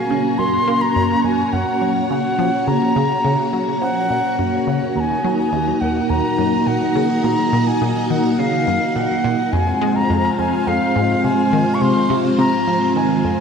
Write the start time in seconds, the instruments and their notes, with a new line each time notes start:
Already playing: string machine A#3 C#4 F#4 C#5 A#5, flute G#5
0.10 synth arpeggio sound C#3
0.38 synth arpeggio sound F#2, flute C6
0.68 synth arpeggio sound A#3
0.81 flute A#5
0.96 synth arpeggio sound F#2
1.24 synth arpeggio sound F#2, flute G#5
1.53 synth arpeggio sound F#2, flute F#5
1.82 synth arpeggio sound F#3
2.10 synth arpeggio sound C#3, flute F#5
2.39 synth arpeggio sound F3
2.67 synth arpeggio sound C#3, flute A#5
2.96 synth arpeggio sound C#3
3.25 synth arpeggio sound C#3
3.53 synth arpeggio sound F#3
3.81 synth arpeggio sound F3, flute F#5
4.10 synth arpeggio sound A#2
4.39 synth arpeggio sound F#2
4.67 synth arpeggio sound C#3
4.95 synth arpeggio sound D#2, string machine A#3 D#4 F#4 D#5 A#5, flute A#5
5.00 flute G#5
5.24 synth arpeggio sound F#3
5.38 flute G#5
5.53 synth arpeggio sound D#2
5.81 synth arpeggio sound D#2, flute F#5
6.10 synth arpeggio sound D#2, flute A#5
6.38 synth arpeggio sound F#2
6.67 synth arpeggio sound A#2, flute F#5
6.95 synth arpeggio sound C#3
7.24 synth arpeggio sound A#2, flute A#5
7.53 synth arpeggio sound A#2
7.67 flute G#5
7.81 synth arpeggio sound A#2
8.10 synth arpeggio sound D#3, flute F#5
8.39 synth arpeggio sound C#3, flute F5
8.67 synth arpeggio sound F#2
8.95 synth arpeggio sound A#2, flute F#5
9.24 synth arpeggio sound A#2
9.53 synth arpeggio sound F2, string machine G#3 C4 F4 C5 F5, flute G#5
9.81 synth arpeggio sound G#3
9.96 flute A#5
10.10 synth arpeggio sound F2
10.39 synth arpeggio sound F2, flute G#5
10.67 synth arpeggio sound F2, flute F5
10.96 synth arpeggio sound G#2
11.24 synth arpeggio sound C3, flute G#5
11.53 synth arpeggio sound D#3
11.74 flute C#6
11.81 synth arpeggio sound C3, flute C6
12.10 synth arpeggio sound C3
12.39 synth arpeggio sound C3, flute A#5
12.67 synth arpeggio sound F3
12.96 synth arpeggio sound D#3, flute G#5
13.24 synth arpeggio sound F2